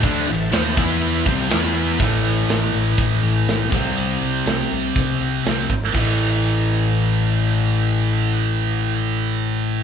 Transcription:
<<
  \new Staff \with { instrumentName = "Tonewheel organ" } { \time 4/4 \key a \minor \tempo 4 = 122 << { <c'' a''>4. <b' b''>4 <c'' a''>8 <b' b''>4 | r1 | r1 | r1 |
r1 | } \\ { e'1 | r1 | r1 | r1 |
r1 | } >> }
  \new Staff \with { instrumentName = "Distorted electric guitar" } { \clef bass \time 4/4 \key a \minor <d a d'>8 <a, e>8 <dis bes dis'>8 <e b e'>4 <c g c'>8 <e b e'>4 | <a, e a>2.~ <a, e a>8 <c g c'>8~ | <c g c'>2. <c g c'>8 r8 | <a, e a>1~ |
<a, e a>1 | }
  \new Staff \with { instrumentName = "Overdriven electric guitar" } { \clef bass \time 4/4 \key a \minor <d a d'>8 <a, e>8 <dis bes dis'>8 <e b e'>4 <c g c'>8 <e b e'>4 | <a, e a>2.~ <a, e a>8 <c g c'>8~ | <c g c'>2.~ <c g c'>8 r8 | <a, e a>1~ |
<a, e a>1 | }
  \new Staff \with { instrumentName = "Picked electric bass" } { \clef bass \time 4/4 \key a \minor d,8 a,,8 dis,8 e,4 c,8 e,4 | a,,8 a,,8 a,,8 a,,8 a,,8 a,,8 b,,8 c,8 | c,8 c,8 c,8 c,8 c,8 c,8 c,8 gis,,8 | a,,1~ |
a,,1 | }
  \new DrumStaff \with { instrumentName = "Drums" } \drummode { \time 4/4 <bd cymr>8 cymr8 <cymr sn>8 <bd cymr>8 cymr8 <bd cymr>8 <cymr sn>16 sn16 cymr8 | <hh bd>8 hh8 <hh sn>8 hh8 <hh bd>8 hh8 <hh sn>8 <hh bd>16 sn16 | hh8 hh8 <hh sn>8 hh8 <hh bd>8 hh8 <hh sn>8 <hh bd>16 sn16 | <cymc bd>4 r4 r4 r4 |
r4 r4 r4 r4 | }
>>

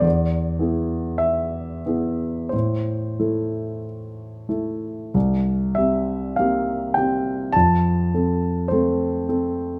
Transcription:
\new Staff \with { instrumentName = "Grand piano" } { \time 4/4 \key c \major \tempo 4 = 49 << { d''4 e''4 c''4 r4 | r8 e''8 f''8 g''8 a''4 c''4 | } \\ { e,8 <b e' gis'>4 <b e' gis'>8 a,8 <a e' a'>4 <a e' a'>8 | c,8 <c' g'>8 <bes c' g'>8 <c' g'>8 f,8 <c' a'>8 <a c' a'>8 <c' a'>8 | } >> }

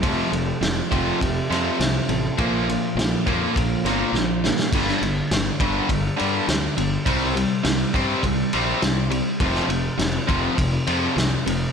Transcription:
<<
  \new Staff \with { instrumentName = "Steel-string acoustic guitar" } { \time 4/4 \key f \mixolydian \tempo 4 = 102 f8 a8 f8 a8 g'8 c'8 f8 a8 | bes,8 bes8 d8 bes8 f'8 c'8 d8 bes8 | r1 | r1 |
r1 | }
  \new Staff \with { instrumentName = "Overdriven electric guitar" } { \clef bass \time 4/4 \key f \mixolydian <f, c f>8 <f, c>8 <f, c>8 <f, c f>8 <f, c>8 <f, c f>8 <f, c>8 <f, c>8 | <bes, f bes>8 <bes, f>8 <bes, f>8 <bes, f bes>8 <bes, f>8 <bes, f bes>8 <bes, f>8 <bes, f>8 | <g, d g>8 <g, d>8 <g, d>8 <g, d g>8 <g, d>8 <g, d g>8 <g, d>8 <g, d>8 | <c g c'>8 <c g>8 <c g>8 <c g c'>8 <c g>8 <c g c'>8 <c g>8 <c g>8 |
<f, c f>8 <f, c>8 <f, c>8 <f, c f>8 <f, c>8 <f, c f>8 <f, c>8 <f, c>8 | }
  \new Staff \with { instrumentName = "Fingered electric bass" } { \clef bass \time 4/4 \key f \mixolydian f,,8 f,,8 f,,8 f,,8 f,,8 f,8 c,8 a,,8 | bes,,4 bes,,8 f,8 bes,,8 g,,8 bes,,4 | g,,8 g,,8 g,,8 g,,8 g,,8 g,8 d,8 g,,8 | c,4 c,8 g,8 c,8 bes,,8 c,4 |
f,,8 f,,8 f,,8 f,,8 f,,8 f,8 c,8 f,,8 | }
  \new DrumStaff \with { instrumentName = "Drums" } \drummode { \time 4/4 <bd cymr>8 cymr8 <cymr sn>8 <bd cymr>8 <bd cymr>8 <cymr sn>8 <cymr sn>8 cymr8 | <bd cymr>8 cymr8 <cymr sn>8 <bd cymr>8 <bd cymr>8 <cymr sn>8 sn8 sn16 sn16 | <cymc bd cymr>16 sn16 cymr8 <cymr sn>8 <bd cymr>8 <bd cymr>8 cymr8 <cymr sn>8 cymr8 | <bd cymr>8 cymr8 <cymr sn>8 <bd cymr>8 <bd cymr>8 cymr8 <cymr sn>8 cymr8 |
<bd cymr>16 sn16 cymr8 <cymr sn>8 <bd cymr>8 <bd cymr>8 cymr8 <cymr sn>8 cymr8 | }
>>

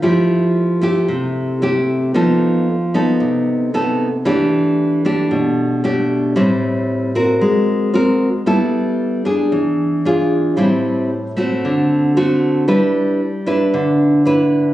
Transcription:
\new Staff \with { instrumentName = "Nylon-string guitar" } { \time 4/4 \key g \major \tempo 4 = 114 << { <a e' g'>4. <a e' g'>4. <a e' g'>4 | <b ees' a'>4 r8 <b ees' a'>4. <b ees' a'>8 r8 | <a d' g'>4. <a d' g'>4. <a d' g'>4 | <g c' e'>4. <c' fis' bes'>4. <c' ges' bes'>8 r8 |
<b e' a'>4. <d' aes'>4. <d' f' gis'>4 | <g c' e'>4 r8 <a c' fis'>4. <a c' fis'>4 | <d' e' b'>4 r8 <d' e' b'>4. <d' e' b'>4 | } \\ { f2 c2 | f2 c2 | e2 b,2 | a,2 aes2 |
g2 e2 | a,2 d2 | g2 d2 | } >> }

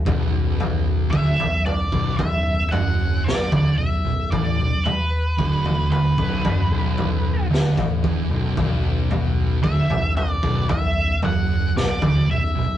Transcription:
<<
  \new Staff \with { instrumentName = "Lead electric guitar" } { \time 4/4 \key b \minor \tempo 4 = 56 r4 e''8 d''8 e''8 fis''8 d''8 e''8 | d''8 b'4 b'4. r4 | r4 e''8 d''8 e''8 fis''8 d''8 e''8 | }
  \new Staff \with { instrumentName = "Distorted electric guitar" } { \clef bass \time 4/4 \key b \minor b,,4 d,16 b,,8 b,,16 b,,8 fis,8 b,,16 d,16 b,,16 b,,16 | a,16 b,,16 r8 d,8. b,,16 fis,16 b,,8. d,16 a,16 e,16 b,,16 | b,,4 d,16 b,,8 b,,16 b,,8 fis,8 b,,16 d,16 b,,16 b,,16 | }
  \new Staff \with { instrumentName = "Distorted electric guitar" } { \clef bass \time 4/4 \key b \minor b,,4 d,16 b,,8 b,,16 b,,8 fis,8 b,,16 d,16 b,,16 b,,16 | a,16 b,,16 r8 d,8. b,,16 fis,16 b,,8. d,16 a,16 e,16 b,,16 | b,,4 d,16 b,,8 b,,16 b,,8 fis,8 b,,16 d,16 b,,16 b,,16 | }
  \new Staff \with { instrumentName = "Fingered electric bass" } { \clef bass \time 4/4 \key b \minor b,,,4 d,,16 b,,,8 b,,,16 b,,,8 fis,,8 b,,,16 d,,16 b,,,16 b,,,16 | a,,16 b,,,16 r8 d,,8. b,,,16 fis,,16 b,,,8. d,,16 a,,16 e,,16 b,,,16 | b,,,4 d,,16 b,,,8 b,,,16 b,,,8 fis,,8 b,,,16 d,,16 b,,,16 b,,,16 | }
  \new DrumStaff \with { instrumentName = "Drums" } \drummode { \time 4/4 <bd tomfh>8 tomfh8 bd16 tomfh16 toml16 bd16 <bd tomfh toml>8 <tomfh toml>8 sn16 <bd tomfh>8. | <bd tomfh>8 tomfh8 bd16 tomfh16 toml16 bd16 <bd tomfh toml>8 <tomfh toml>8 sn16 <bd tomfh>16 bd8 | <bd tomfh>8 tomfh8 bd16 tomfh16 toml16 bd16 <bd tomfh toml>8 <tomfh toml>8 sn16 <bd tomfh>8. | }
>>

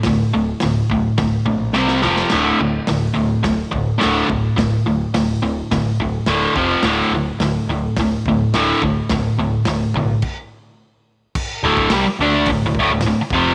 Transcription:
<<
  \new Staff \with { instrumentName = "Overdriven electric guitar" } { \clef bass \time 4/4 \key d \minor \tempo 4 = 106 <d, a,>8 <d, a,>8 <d, a,>8 <d, a,>8 <d, a,>8 <d, a,>8 <c g c'>8 <f, c f>8 | <d, a, d>8 <d, a,>8 <d, a,>8 <d, a,>8 <d, a,>8 <d, a,>8 <d, a, d>8 <d, a,>8 | <d, a,>8 <d, a,>8 <d, a,>8 <d, a,>8 <d, a,>8 <d, a,>8 <d, a, d>8 <f, c f>8 | <d, a, d>8 <d, a,>8 <d, a,>8 <d, a,>8 <d, a,>8 <d, a,>8 <d, a, d>8 <d, a,>8 |
<d, a,>8 <d, a,>8 <d, a,>8 <d, a,>8 r2 | r8 <d, a, d>8 <c g>16 r16 <d a d'>8 <d, a,>16 <d, a,>16 <d, a,>16 <d, a,>16 <d, a,>16 r16 <f, c f>8 | }
  \new Staff \with { instrumentName = "Picked electric bass" } { \clef bass \time 4/4 \key d \minor d,,8 d,,8 d,,8 d,,8 d,,8 bes,,8 c,8 f,,8 | d,,8 d,,8 d,,8 d,,8 d,,8 d,,8 d,,8 d,,8 | d,,8 d,,8 d,,8 d,,8 d,,8 d,,8 d,,8 f,,8 | d,,8 d,,8 d,,8 d,,8 d,,8 d,,8 d,,8 d,,8 |
d,,8 d,,8 d,,8 b,,8 r2 | r8 d,,8 c,16 r16 d,8 d,,16 d,,16 d,,16 d,,16 d,,16 r16 f,,8 | }
  \new DrumStaff \with { instrumentName = "Drums" } \drummode { \time 4/4 <hho bd sn>4 <hho sn>8 bd8 <hho bd sn>8 bd8 sn16 sn16 sn16 sn16 | <cymc sn>4 <hho sn>4 <hho bd sn>8 bd8 <hho sn>8 bd8 | <hho bd sn>4 <hho sn>4 <hho bd sn>8 bd8 <hho sn>8 bd8 | <hho sn>4 <hho sn>4 <hho bd sn>8 bd8 <hho sn>8 bd8 |
<hho bd sn>4 <hho sn>8 bd8 <cymc bd>4 r4 | <cymc bd>8. bd16 <hho sn>4 <hho bd>8 bd8 <hho sn>8 bd8 | }
>>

